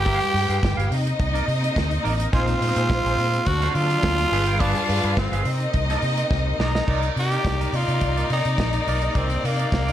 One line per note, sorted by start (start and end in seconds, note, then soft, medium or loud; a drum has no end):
0.00 0.18 G1 medium
0.00 0.90 G3 medium
0.00 0.90 G#3 medium
0.00 0.89 F4 medium
0.00 0.89 G4 loud
0.00 0.91 G4 loud
0.00 0.90 B4 medium
0.00 0.89 G5 loud
0.05 0.26 G#4 medium
0.05 0.21 B4 medium
0.05 0.20 F5 loud
0.05 kick loud
0.05 closed hi-hat medium
0.21 muted clean electric guitar stroke medium
0.21 closed hi-hat medium
0.34 0.45 G2 loud
0.34 muted clean electric guitar stroke soft
0.34 open hi-hat medium
0.49 0.59 G2 medium
0.49 0.61 G#4 medium
0.49 0.61 B4 medium
0.49 0.62 F5 medium
0.49 closed hi-hat medium
0.63 0.74 G1 loud
0.63 kick loud
0.63 snare loud
0.63 closed hi-hat medium
0.77 0.87 G1 loud
0.77 0.91 G#4 medium
0.77 0.91 B4 medium
0.77 0.95 F5 medium
0.77 closed hi-hat soft
0.90 2.31 C3 medium
0.90 1.11 C3 loud
0.90 4.28 A#3 medium
0.90 2.31 C4 medium
0.90 3.44 D#4 medium
0.90 2.30 D#4 medium
0.90 2.31 D#5 loud
0.90 muted clean electric guitar stroke soft
0.90 open hi-hat medium
1.06 muted clean electric guitar stroke soft
1.06 closed hi-hat medium
1.19 1.40 C2 loud
1.19 muted clean electric guitar stroke medium
1.19 kick loud
1.19 closed hi-hat medium
1.34 1.46 D#4 medium
1.34 1.47 A#4 medium
1.34 1.47 D5 medium
1.34 closed hi-hat medium
1.48 1.68 C3 loud
1.48 muted clean electric guitar stroke soft
1.48 open hi-hat medium
1.62 muted clean electric guitar stroke soft
1.62 closed hi-hat medium
1.76 1.97 D2 medium
1.76 muted clean electric guitar stroke medium
1.76 kick loud
1.76 snare loud
1.76 closed hi-hat medium
1.90 muted clean electric guitar stroke medium
1.90 closed hi-hat medium
2.03 2.25 A1 medium
2.03 2.19 D#4 medium
2.03 2.19 A#4 loud
2.03 2.18 D5 loud
2.03 open hi-hat medium
2.19 2.31 D#4 medium
2.19 2.32 A#4 medium
2.19 2.33 D#5 medium
2.19 closed hi-hat medium
2.32 2.53 A#1 loud
2.32 3.46 G#3 medium
2.32 3.45 C4 medium
2.32 2.52 D#4 medium
2.32 3.49 F4 loud
2.32 2.47 G#4 medium
2.32 3.45 C5 loud
2.32 2.46 C5 loud
2.32 kick loud
2.32 closed hi-hat medium
2.47 muted clean electric guitar stroke soft
2.47 closed hi-hat medium
2.61 2.72 A#2 loud
2.61 muted clean electric guitar stroke soft
2.61 open hi-hat medium
2.76 2.86 A#2 loud
2.76 2.89 D#4 medium
2.76 2.89 G#4 medium
2.76 2.90 C5 medium
2.76 closed hi-hat soft
2.90 3.01 A#1 loud
2.90 muted clean electric guitar stroke soft
2.90 kick loud
2.90 snare loud
2.90 closed hi-hat medium
3.05 3.14 A#1 loud
3.05 3.17 D#4 medium
3.05 3.18 G#4 medium
3.05 3.18 C5 medium
3.05 closed hi-hat medium
3.18 3.38 A#2 loud
3.18 muted clean electric guitar stroke medium
3.18 open hi-hat medium
3.33 muted clean electric guitar stroke soft
3.33 closed hi-hat soft
3.46 3.67 D2 loud
3.46 4.31 D3 medium
3.46 4.31 F#3 medium
3.46 4.31 C4 medium
3.46 4.31 D4 medium
3.46 5.44 F4 medium
3.46 3.71 F#4 loud
3.46 4.31 D5 medium
3.46 muted clean electric guitar stroke soft
3.46 kick medium
3.46 closed hi-hat medium
3.62 3.75 F#4 medium
3.62 3.75 C5 medium
3.62 3.75 F5 medium
3.62 snare soft
3.62 closed hi-hat soft
3.71 4.61 F4 loud
3.71 3.76 F#4 medium
3.75 3.95 D3 loud
3.75 muted clean electric guitar stroke soft
3.75 open hi-hat medium
3.90 muted clean electric guitar stroke soft
3.90 closed hi-hat medium
4.03 4.23 D2 loud
4.03 muted clean electric guitar stroke soft
4.03 kick loud
4.03 snare loud
4.03 closed hi-hat medium
4.18 muted clean electric guitar stroke medium
4.18 closed hi-hat medium
4.32 4.72 G1 loud
4.32 5.44 G3 medium
4.32 5.43 F4 medium
4.32 4.47 G#4 loud
4.32 5.45 G#4 medium
4.32 5.45 B4 medium
4.32 4.46 B4 loud
4.32 5.43 F5 loud
4.32 4.47 F5 loud
4.32 open hi-hat medium
4.46 4.58 G#4 medium
4.46 4.59 B4 medium
4.46 4.60 G5 medium
4.46 closed hi-hat medium
4.60 5.20 D4 loud
4.60 4.79 G#4 medium
4.60 4.74 B4 loud
4.60 4.73 F5 loud
4.60 kick loud
4.60 closed hi-hat medium
4.74 muted clean electric guitar stroke medium
4.74 closed hi-hat soft
4.88 5.00 G2 loud
4.88 muted clean electric guitar stroke soft
4.88 open hi-hat medium
5.03 5.13 G2 medium
5.03 5.15 G#4 medium
5.03 5.16 B4 medium
5.03 5.16 F5 medium
5.03 closed hi-hat medium
5.17 5.28 G1 loud
5.17 5.74 C4 medium
5.17 kick loud
5.17 snare loud
5.17 closed hi-hat medium
5.32 5.41 G1 medium
5.32 5.45 G#4 medium
5.32 5.45 B4 medium
5.32 5.50 F5 medium
5.32 closed hi-hat medium
5.45 5.66 C3 loud
5.45 6.86 C3 medium
5.45 6.85 A#3 medium
5.45 6.86 C4 medium
5.45 6.84 D#4 medium
5.45 6.85 D#4 medium
5.45 6.85 D#5 loud
5.45 muted clean electric guitar stroke soft
5.45 open hi-hat medium
5.60 muted clean electric guitar stroke soft
5.60 closed hi-hat soft
5.73 5.94 C2 loud
5.73 muted clean electric guitar stroke soft
5.73 kick loud
5.73 closed hi-hat medium
5.90 6.02 D#4 medium
5.90 6.02 A#4 medium
5.90 6.02 D5 medium
5.90 snare soft
5.90 closed hi-hat medium
6.02 6.22 C3 loud
6.02 muted clean electric guitar stroke soft
6.02 open hi-hat medium
6.17 muted clean electric guitar stroke soft
6.17 closed hi-hat medium
6.31 6.51 C2 medium
6.31 muted clean electric guitar stroke soft
6.31 kick loud
6.31 snare medium
6.47 muted clean electric guitar stroke soft
6.59 6.79 B1 medium
6.59 6.74 D#4 medium
6.59 7.14 D#4 medium
6.59 6.74 A#4 medium
6.59 6.74 D5 loud
6.59 snare loud
6.74 6.86 D#4 medium
6.74 6.87 A#4 medium
6.74 6.88 D#5 medium
6.74 snare loud
6.86 7.08 C2 medium
6.86 9.92 C3 medium
6.86 9.92 A#3 medium
6.86 9.92 D#4 medium
6.86 9.92 D#4 loud
6.86 7.07 D#4 medium
6.86 7.02 A#4 medium
6.86 9.92 D5 medium
6.86 9.92 D5 loud
6.86 7.02 D5 loud
6.86 kick loud
6.86 crash medium
7.02 muted clean electric guitar stroke soft
7.02 closed hi-hat soft
7.16 7.36 C3 medium
7.16 7.78 G4 loud
7.16 muted clean electric guitar stroke soft
7.16 open hi-hat medium
7.31 7.44 D#4 soft
7.31 7.45 A#4 medium
7.31 7.45 D5 medium
7.31 closed hi-hat medium
7.45 7.65 C2 loud
7.45 kick loud
7.45 snare loud
7.45 closed hi-hat medium
7.59 7.72 D#4 medium
7.59 7.73 A#4 medium
7.59 7.73 D5 medium
7.59 closed hi-hat soft
7.73 7.83 C3 medium
7.73 8.31 F4 medium
7.73 muted clean electric guitar stroke soft
7.73 open hi-hat medium
7.88 7.97 C3 medium
7.88 muted clean electric guitar stroke soft
7.88 closed hi-hat soft
8.01 8.22 C2 loud
8.01 muted clean electric guitar stroke soft
8.01 kick medium
8.01 closed hi-hat medium
8.17 8.30 D#4 medium
8.17 8.30 A#4 medium
8.17 8.31 D5 medium
8.17 closed hi-hat soft
8.30 8.41 C3 medium
8.30 9.19 D#4 medium
8.30 muted clean electric guitar stroke soft
8.30 open hi-hat soft
8.45 8.55 C3 medium
8.45 muted clean electric guitar stroke medium
8.45 closed hi-hat soft
8.58 8.78 A#1 loud
8.58 muted clean electric guitar stroke soft
8.58 kick loud
8.58 snare loud
8.58 closed hi-hat medium
8.73 muted clean electric guitar stroke soft
8.73 closed hi-hat medium
8.87 9.07 B1 medium
8.87 9.02 D#4 medium
8.87 9.02 A#4 medium
8.87 9.02 D5 medium
8.87 open hi-hat medium
9.02 9.14 D#4 medium
9.02 9.15 A#4 medium
9.02 9.15 D#5 medium
9.02 closed hi-hat medium
9.15 9.36 C2 medium
9.15 9.47 C4 medium
9.15 9.34 D#4 medium
9.15 9.30 A#4 medium
9.15 9.30 D5 loud
9.15 kick loud
9.15 closed hi-hat medium
9.30 muted clean electric guitar stroke soft
9.30 closed hi-hat soft
9.44 9.64 C3 medium
9.44 9.92 A#3 loud
9.44 muted clean electric guitar stroke soft
9.44 open hi-hat medium
9.59 9.71 D#4 medium
9.59 9.71 A#4 medium
9.59 9.71 D5 medium
9.59 closed hi-hat medium
9.72 9.92 C2 medium
9.72 kick loud
9.72 snare loud
9.72 closed hi-hat medium
9.87 9.92 D#4 medium
9.87 9.92 A#4 medium
9.87 9.92 D5 medium
9.87 closed hi-hat soft